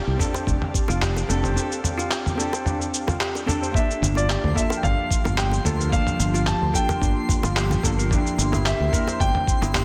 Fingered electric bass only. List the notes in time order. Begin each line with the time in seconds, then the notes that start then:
0.07 C2
0.47 F1
0.89 F1
1.29 F1
4.02 G1
4.44 D2
4.83 G1
5.25 G1
5.65 D2
6.19 G1
6.62 D2
7.02 G1
7.44 G1
7.83 G1
8.38 G1
8.80 D2
9.20 G1
9.62 G1